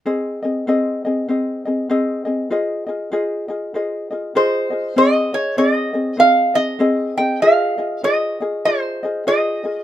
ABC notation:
X:1
M:4/4
L:1/8
Q:"Swing" 1/4=98
K:Ab
V:1 name="Resonator guitar played with a steel bar"
z8 | z6 c2 | e d e2 f e2 g | f2 e2 c2 e2 |]
V:2 name="Ukulele"
[CAce] [CAe] [CAce] [CAe] [CAce] [CAe] [CAce] [CAe] | [FAce] [FAe] [FAce] [FAe] [FAce] [FAe] [FAce] [FAe] | [CAce] [Ae] [CAce] [CAe] [CAce] [CAe] [CAce] [CAe] | [FAce] [FAe] [FAce] [FAe] [FAce] [FAe] [FAce] [FAe] |]